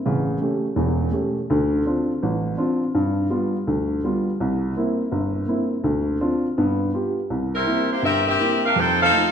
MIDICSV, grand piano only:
0, 0, Header, 1, 2, 480
1, 0, Start_track
1, 0, Tempo, 362976
1, 65, Time_signature, 4, 2, 24, 8
1, 12319, End_track
2, 0, Start_track
2, 0, Title_t, "Grand piano"
2, 0, Program_c, 0, 0
2, 75, Note_on_c, 0, 33, 65
2, 75, Note_on_c, 0, 49, 69
2, 484, Note_off_c, 0, 49, 0
2, 485, Note_off_c, 0, 33, 0
2, 546, Note_on_c, 0, 57, 51
2, 547, Note_on_c, 0, 61, 46
2, 550, Note_on_c, 0, 67, 52
2, 874, Note_off_c, 0, 57, 0
2, 874, Note_off_c, 0, 61, 0
2, 876, Note_off_c, 0, 67, 0
2, 1004, Note_on_c, 0, 40, 65
2, 1010, Note_on_c, 0, 28, 73
2, 1427, Note_off_c, 0, 40, 0
2, 1430, Note_off_c, 0, 28, 0
2, 1475, Note_on_c, 0, 57, 50
2, 1477, Note_on_c, 0, 61, 42
2, 1486, Note_on_c, 0, 67, 54
2, 1817, Note_off_c, 0, 57, 0
2, 1818, Note_off_c, 0, 61, 0
2, 1823, Note_off_c, 0, 67, 0
2, 1981, Note_on_c, 0, 50, 65
2, 1983, Note_on_c, 0, 38, 73
2, 2395, Note_off_c, 0, 50, 0
2, 2396, Note_off_c, 0, 38, 0
2, 2457, Note_on_c, 0, 60, 51
2, 2464, Note_on_c, 0, 62, 45
2, 2468, Note_on_c, 0, 65, 54
2, 2788, Note_off_c, 0, 60, 0
2, 2791, Note_off_c, 0, 62, 0
2, 2793, Note_off_c, 0, 65, 0
2, 2944, Note_on_c, 0, 33, 74
2, 3356, Note_off_c, 0, 33, 0
2, 3407, Note_on_c, 0, 60, 52
2, 3407, Note_on_c, 0, 62, 47
2, 3416, Note_on_c, 0, 65, 54
2, 3742, Note_off_c, 0, 60, 0
2, 3742, Note_off_c, 0, 62, 0
2, 3746, Note_off_c, 0, 65, 0
2, 3896, Note_on_c, 0, 43, 74
2, 4311, Note_off_c, 0, 43, 0
2, 4368, Note_on_c, 0, 55, 50
2, 4372, Note_on_c, 0, 59, 51
2, 4376, Note_on_c, 0, 65, 58
2, 4701, Note_off_c, 0, 55, 0
2, 4703, Note_off_c, 0, 59, 0
2, 4705, Note_off_c, 0, 65, 0
2, 4858, Note_on_c, 0, 38, 69
2, 5271, Note_off_c, 0, 38, 0
2, 5345, Note_on_c, 0, 55, 51
2, 5354, Note_on_c, 0, 59, 47
2, 5354, Note_on_c, 0, 65, 56
2, 5669, Note_off_c, 0, 55, 0
2, 5674, Note_off_c, 0, 59, 0
2, 5674, Note_off_c, 0, 65, 0
2, 5825, Note_on_c, 0, 36, 69
2, 6235, Note_off_c, 0, 36, 0
2, 6300, Note_on_c, 0, 58, 56
2, 6310, Note_on_c, 0, 60, 48
2, 6313, Note_on_c, 0, 64, 54
2, 6626, Note_off_c, 0, 58, 0
2, 6631, Note_off_c, 0, 60, 0
2, 6633, Note_off_c, 0, 64, 0
2, 6767, Note_on_c, 0, 31, 72
2, 7185, Note_off_c, 0, 31, 0
2, 7241, Note_on_c, 0, 58, 51
2, 7249, Note_on_c, 0, 60, 46
2, 7255, Note_on_c, 0, 64, 55
2, 7577, Note_off_c, 0, 58, 0
2, 7580, Note_off_c, 0, 60, 0
2, 7584, Note_off_c, 0, 64, 0
2, 7720, Note_on_c, 0, 38, 67
2, 8141, Note_off_c, 0, 38, 0
2, 8207, Note_on_c, 0, 60, 51
2, 8211, Note_on_c, 0, 62, 49
2, 8211, Note_on_c, 0, 65, 58
2, 8540, Note_off_c, 0, 60, 0
2, 8541, Note_off_c, 0, 62, 0
2, 8541, Note_off_c, 0, 65, 0
2, 8698, Note_on_c, 0, 59, 74
2, 8700, Note_on_c, 0, 43, 67
2, 9111, Note_off_c, 0, 59, 0
2, 9112, Note_off_c, 0, 43, 0
2, 9170, Note_on_c, 0, 59, 46
2, 9176, Note_on_c, 0, 65, 44
2, 9188, Note_on_c, 0, 67, 55
2, 9501, Note_off_c, 0, 59, 0
2, 9505, Note_off_c, 0, 65, 0
2, 9511, Note_off_c, 0, 67, 0
2, 9657, Note_on_c, 0, 36, 62
2, 10072, Note_off_c, 0, 36, 0
2, 10127, Note_on_c, 0, 58, 47
2, 10131, Note_on_c, 0, 60, 42
2, 10138, Note_on_c, 0, 64, 53
2, 10461, Note_off_c, 0, 58, 0
2, 10463, Note_off_c, 0, 60, 0
2, 10467, Note_off_c, 0, 64, 0
2, 10611, Note_on_c, 0, 31, 65
2, 11030, Note_off_c, 0, 31, 0
2, 11101, Note_on_c, 0, 58, 47
2, 11104, Note_on_c, 0, 60, 41
2, 11112, Note_on_c, 0, 64, 48
2, 11430, Note_off_c, 0, 58, 0
2, 11431, Note_off_c, 0, 60, 0
2, 11435, Note_off_c, 0, 64, 0
2, 11582, Note_on_c, 0, 41, 64
2, 11997, Note_off_c, 0, 41, 0
2, 12069, Note_on_c, 0, 57, 51
2, 12077, Note_on_c, 0, 63, 45
2, 12079, Note_on_c, 0, 65, 48
2, 12319, Note_off_c, 0, 57, 0
2, 12319, Note_off_c, 0, 63, 0
2, 12319, Note_off_c, 0, 65, 0
2, 12319, End_track
0, 0, End_of_file